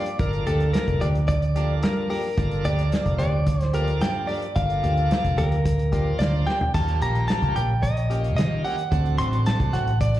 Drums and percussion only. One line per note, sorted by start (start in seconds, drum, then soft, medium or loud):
0.06 closed hi-hat soft
0.19 kick loud
0.19 closed hi-hat medium
0.33 closed hi-hat soft
0.47 closed hi-hat medium
0.60 closed hi-hat soft
0.74 snare loud
0.74 closed hi-hat medium
0.88 kick medium
0.88 closed hi-hat soft
1.02 closed hi-hat medium
1.15 closed hi-hat soft
1.29 kick medium
1.29 closed hi-hat medium
1.42 closed hi-hat soft
1.56 closed hi-hat medium
1.83 snare loud
1.83 closed hi-hat medium
2.10 open hi-hat medium
2.38 kick loud
2.38 closed hi-hat medium
2.51 closed hi-hat soft
2.65 closed hi-hat medium
2.79 closed hi-hat soft
2.92 snare medium
2.92 closed hi-hat medium
3.06 kick medium
3.06 closed hi-hat soft
3.19 closed hi-hat medium
3.46 kick medium
3.46 closed hi-hat medium
3.60 snare soft
3.60 closed hi-hat soft
3.74 closed hi-hat medium
3.87 closed hi-hat soft
4.01 snare loud
4.01 closed hi-hat medium
4.29 open hi-hat medium
4.42 closed hi-hat soft
4.56 kick loud
4.56 closed hi-hat medium
4.70 closed hi-hat soft
4.84 closed hi-hat medium
4.97 closed hi-hat soft
5.11 snare loud
5.11 closed hi-hat medium
5.25 kick medium
5.25 closed hi-hat soft
5.38 closed hi-hat medium
5.52 closed hi-hat soft
5.65 kick medium
5.65 closed hi-hat medium
5.79 closed hi-hat soft
5.93 kick medium
5.93 closed hi-hat medium
6.20 snare loud
6.20 closed hi-hat medium
6.49 snare medium
6.61 floor tom medium
6.74 kick loud
6.74 closed hi-hat medium
6.74 crash medium
6.88 closed hi-hat soft
7.02 closed hi-hat medium
7.15 closed hi-hat soft
7.29 snare loud
7.29 closed hi-hat medium
7.42 kick medium
7.42 closed hi-hat soft
7.56 closed hi-hat medium
7.83 kick medium
7.83 closed hi-hat medium
7.97 closed hi-hat soft
8.11 closed hi-hat medium
8.24 closed hi-hat soft
8.38 snare loud
8.38 closed hi-hat medium
8.65 open hi-hat medium
8.79 closed hi-hat soft
8.92 kick loud
8.92 closed hi-hat medium
9.06 closed hi-hat soft
9.19 closed hi-hat medium
9.33 closed hi-hat soft
9.46 snare loud
9.46 closed hi-hat medium
9.60 kick medium
9.60 closed hi-hat soft
9.74 closed hi-hat medium
9.87 closed hi-hat soft
10.01 kick medium
10.01 closed hi-hat medium
10.14 snare soft
10.14 closed hi-hat soft